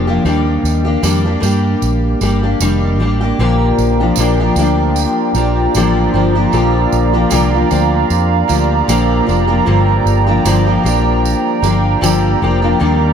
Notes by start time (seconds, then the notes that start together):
Already playing: F1
0.07 F3 A#3 D4 G4
0.25 D#2 D#3 G3 A#3 D4 G4, tambourine
0.63 D#2, tambourine
0.85 A#3 D4 G4
1.03 F2 D#3 G3 A#3 D4 G4, tambourine
1.25 A#3 D4 G4
1.40 G2 G3 A#3 D4 G4, tambourine
1.82 A#1, tambourine
2.21 G1 G3 A#3 D4 G4, tambourine
2.43 A#3 D4 G4
2.60 F1 D#3 G3 A#3 D4 G4, tambourine
2.99 A1 G3 A#3 D4 G4
3.21 A#3 D4 G4
3.39 A#1 A#2 D3 F3 A#3 D4 F4 G4 D5 G5 A#5
3.78 A#1, tambourine
4.00 F3 A#3 D4 G4
4.16 A#1 A#2 D3 F3 A#3 D4, tambourine
4.20 G4
4.40 F3 A#3 D4 G4
4.56 D2 F3 A#3 D4 G4, tambourine
4.96 tambourine
5.35 A#1 F3 A#3 D4 G4, tambourine
5.75 A1 D3 F3 A#3 D4 G4, tambourine
6.14 G1 F3 A#3 D4 G4
6.35 F3 A#3 D4 G4
6.52 A#1 A#2 D3 F3 A#3 D4 G4 F5, tambourine
6.92 A#1, tambourine
7.13 F3 A#3 D4 G4
7.30 C2 A#2 D3 F3 A#3 D4 G4, tambourine
7.53 F3 A#3 D4 G4
7.70 D2 F3 A#3 D4 G4, tambourine
8.10 F2, tambourine
8.48 D2 F3 A#3 D4 G4, tambourine
8.88 A#1 A#2 D3 F3 A#3 D4 G4, tambourine
9.26 F1 F3 A#3 D4 G4, tambourine
9.47 F3 A#3 D4 G4
9.66 G1 G2 D3 F3 A#3 D4 G4 G5
10.06 G1, tambourine
10.27 F3 A#3 D4 G4
10.45 G1 G2 D3 F3 A#3 D4 G4, tambourine
10.66 F3 A#3 D4 G4
10.83 A#1 F3 A#3 D4 G4, tambourine
11.25 tambourine
11.62 G1 F3 A#3 D4 G4, tambourine
12.01 G1 G2 D3 F3 A#3 D4 G4, tambourine
12.42 F1 F3 A#3 D4 G4
12.62 F3 A#3 D4 G4
12.79 D#2 D#3 G3 A#3 D4 G4 A#5